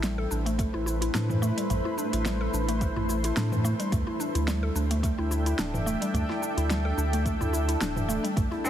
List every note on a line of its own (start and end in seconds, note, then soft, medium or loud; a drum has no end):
0.00 0.26 A1 medium
0.00 0.17 G3 medium
0.00 3.88 A3 medium
0.00 3.88 E4 medium
0.00 3.88 B4 medium
0.00 3.88 C5 medium
0.00 snare loud
0.00 closed hi-hat soft
0.00 cabasa soft
0.18 0.30 A4 loud
0.31 0.68 A1 medium
0.31 0.40 D4 medium
0.31 cabasa medium
0.46 0.57 A3 medium
0.46 closed hi-hat medium
0.46 cabasa soft
0.58 0.67 A3 medium
0.58 kick loud
0.58 closed hi-hat soft
0.58 cabasa soft
0.74 1.10 A1 medium
0.74 0.85 E4 medium
0.86 0.95 E4 medium
0.86 cabasa medium
1.02 1.13 E4 medium
1.02 closed hi-hat medium
1.02 cabasa soft
1.14 1.52 A2 medium
1.14 1.28 D4 medium
1.14 snare loud
1.14 closed hi-hat soft
1.14 cabasa soft
1.29 1.41 E3 medium
1.29 mid tom medium
1.29 cabasa soft
1.42 1.56 A3 loud
1.42 cabasa medium
1.57 1.69 G3 medium
1.57 closed hi-hat medium
1.57 cabasa soft
1.70 1.82 A1 loud
1.70 1.79 A3 medium
1.70 closed hi-hat soft
1.70 mid tom medium
1.70 cabasa soft
1.85 1.97 E4 medium
1.98 2.11 D4 medium
1.98 cabasa medium
2.13 2.49 A1 medium
2.13 2.24 E4 medium
2.13 closed hi-hat medium
2.13 cabasa soft
2.25 2.39 G3 medium
2.25 snare loud
2.25 closed hi-hat soft
2.25 cabasa soft
2.41 2.52 A4 medium
2.53 2.91 A1 medium
2.53 2.62 D4 medium
2.53 cabasa medium
2.68 2.80 A3 medium
2.68 closed hi-hat medium
2.68 cabasa soft
2.81 2.90 A3 medium
2.81 kick loud
2.81 closed hi-hat soft
2.81 cabasa soft
2.96 3.32 A1 medium
2.96 3.08 E4 medium
2.96 mid tom medium
3.09 3.18 E4 medium
3.09 cabasa medium
3.24 3.36 E4 medium
3.24 closed hi-hat medium
3.24 cabasa soft
3.37 3.74 A2 medium
3.37 3.50 D4 medium
3.37 snare loud
3.37 closed hi-hat soft
3.37 cabasa soft
3.52 3.63 E3 medium
3.52 mid tom medium
3.52 cabasa soft
3.64 3.78 A3 loud
3.64 cabasa medium
3.79 3.91 G3 medium
3.79 closed hi-hat medium
3.79 cabasa soft
3.92 4.04 D2 loud
3.92 4.01 A3 medium
3.92 8.33 D4 medium
3.92 8.32 A4 medium
3.92 8.32 E5 medium
3.92 8.33 G5 medium
3.92 kick loud
3.92 closed hi-hat soft
3.92 mid tom medium
3.92 cabasa soft
4.07 4.19 E4 medium
4.20 4.34 D4 medium
4.20 cabasa medium
4.35 4.71 D2 medium
4.35 4.46 E4 medium
4.35 closed hi-hat medium
4.35 cabasa soft
4.47 4.61 G3 medium
4.47 snare loud
4.47 closed hi-hat soft
4.47 cabasa soft
4.63 4.74 A4 loud
4.75 5.13 D2 medium
4.75 4.84 D4 medium
4.75 cabasa medium
4.91 5.02 A3 medium
4.91 closed hi-hat soft
4.91 cabasa soft
5.03 5.12 A3 medium
5.03 kick loud
5.03 closed hi-hat soft
5.03 cabasa soft
5.18 5.54 D2 medium
5.18 5.30 E4 medium
5.31 5.40 E4 medium
5.31 cabasa medium
5.46 5.58 E4 medium
5.46 closed hi-hat medium
5.46 cabasa soft
5.59 5.96 D1 medium
5.59 5.72 D4 loud
5.59 snare loud
5.59 closed hi-hat soft
5.59 cabasa soft
5.74 5.85 E3 medium
5.74 mid tom medium
5.74 cabasa soft
5.86 6.00 A3 medium
5.86 cabasa medium
6.01 6.13 G3 medium
6.01 closed hi-hat soft
6.01 cabasa soft
6.14 6.26 D2 loud
6.14 6.23 A3 medium
6.14 closed hi-hat soft
6.14 mid tom medium
6.14 cabasa soft
6.29 6.41 E4 medium
6.29 snare soft
6.42 6.56 D4 medium
6.42 cabasa medium
6.57 6.93 D2 medium
6.57 6.69 E4 medium
6.57 closed hi-hat soft
6.57 cabasa soft
6.70 6.83 G3 medium
6.70 snare medium
6.70 closed hi-hat soft
6.70 cabasa soft
6.85 6.96 A4 loud
6.97 7.35 D2 loud
6.97 7.06 D4 medium
6.97 cabasa medium
7.13 7.24 A3 medium
7.13 closed hi-hat soft
7.13 cabasa soft
7.26 7.34 A3 medium
7.26 kick medium
7.26 closed hi-hat soft
7.26 cabasa soft
7.41 7.76 D2 medium
7.41 7.52 E4 medium
7.41 mid tom medium
7.41 cabasa soft
7.53 7.62 E4 medium
7.53 cabasa medium
7.68 7.80 E4 medium
7.68 closed hi-hat medium
7.68 cabasa soft
7.81 8.18 D1 medium
7.81 7.95 D4 loud
7.81 snare loud
7.81 closed hi-hat soft
7.81 cabasa soft
7.96 8.07 E3 medium
7.96 mid tom medium
7.96 cabasa soft
8.09 8.22 A3 medium
8.09 cabasa medium
8.24 8.35 G3 medium
8.24 closed hi-hat soft
8.24 cabasa soft
8.36 8.48 A1 loud
8.36 8.45 A3 medium
8.36 8.70 A3 medium
8.36 8.70 E4 medium
8.36 8.70 B4 medium
8.36 8.70 C5 medium
8.36 kick loud
8.36 closed hi-hat soft
8.36 mid tom medium
8.36 cabasa soft
8.51 8.64 E4 medium
8.51 djembe tone medium
8.64 8.70 C4 medium
8.64 8.70 D4 medium
8.64 cabasa medium